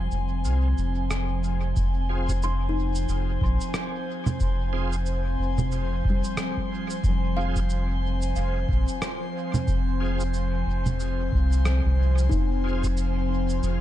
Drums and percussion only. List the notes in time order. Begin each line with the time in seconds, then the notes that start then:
0.11 cabasa
0.45 cabasa
0.78 cabasa
1.11 cross-stick, cabasa
1.44 cabasa
1.76 kick, cabasa
2.29 kick, cabasa
2.42 cabasa
2.95 cabasa
3.08 cabasa
3.41 kick
3.61 cabasa
3.74 cross-stick, cabasa
4.26 low conga, cabasa
4.40 kick, cabasa
4.92 cabasa
5.06 cabasa
5.58 low conga, cabasa
5.72 cabasa
6.05 kick
6.24 cabasa
6.37 cross-stick, cabasa
6.57 kick
6.90 cabasa
7.04 kick, cabasa
7.56 kick, cabasa
7.70 cabasa
8.22 cabasa
8.36 cabasa
8.69 kick
8.88 cabasa
9.02 cross-stick, cabasa
9.54 low conga, cabasa
9.68 kick, cabasa
10.20 cabasa
10.34 cabasa
10.86 low conga, cabasa
11.00 cabasa
11.32 kick
11.52 cabasa
11.65 cross-stick, cabasa
11.85 kick
12.18 cabasa
12.31 kick, cabasa
12.84 kick, cabasa
12.97 cabasa
13.49 cabasa
13.63 cabasa